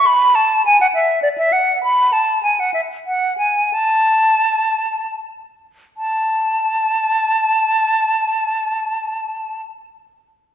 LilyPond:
\new Staff \with { instrumentName = "Flute" } { \time 3/4 \key fis \minor \tempo 4 = 82 b''8 a''8 gis''16 fis''16 e''8 d''16 e''16 fis''8 | b''8 a''8 gis''16 fis''16 e''8 fis''8 gis''8 | a''2 r4 | a''2.~ |
a''2. | }